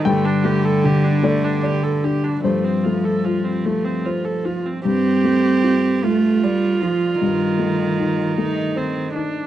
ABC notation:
X:1
M:6/8
L:1/16
Q:3/8=51
K:Dphr
V:1 name="Viola"
A, D G A G D A, D G A G D | A, C F A F C A, C F A F C | G6 F6- | F6 E2 C2 D2 |]
V:2 name="Upright piano"
g6 d6 | c6 z6 | z12 | z12 |]
V:3 name="Upright piano"
G,,2 A,2 D,2 A,2 d2 D2 | G,,2 A,2 F,2 A,2 c2 F2 | G,,2 A,2 F2 A,2 d2 F2 | G,,2 A,2 E2 A,2 c2 E2 |]
V:4 name="Cello" clef=bass
D,12 | F,8- F,3 z | C6 A,2 G,2 F,2 | E,8- E,2 z2 |]